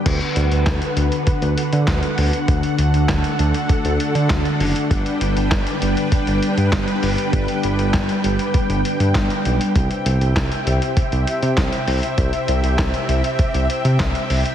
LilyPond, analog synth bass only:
\new Staff \with { instrumentName = "Analog synth bass" } { \clef bass \time 4/4 \key d \mixolydian \tempo 4 = 99 d,16 r16 d,16 d,16 d,16 r16 d,16 r8 d,16 r16 d16 d,16 r16 d,16 r16 | d,16 r16 d,16 d,16 d,16 r16 d,16 r8 d,16 r16 d16 d,16 r16 fis,,16 r16 | g,,16 r16 g,,16 g,,16 g,,16 r16 g,,16 r8 g,,16 r16 g,16 g,,16 r16 g,,16 r16 | g,,16 r16 g,,16 g,,16 g,,16 r16 g,,16 r8 g,,16 r16 g,16 g,,16 r16 b,,16 r16 |
c,16 r16 c,16 c,16 c,16 r16 c,16 r8 c,16 r16 c16 c,16 r16 c,16 r16 | c,16 r16 c,16 c,16 c,16 r16 c,16 r8 c,16 r16 c16 c,16 r16 c,16 r16 | }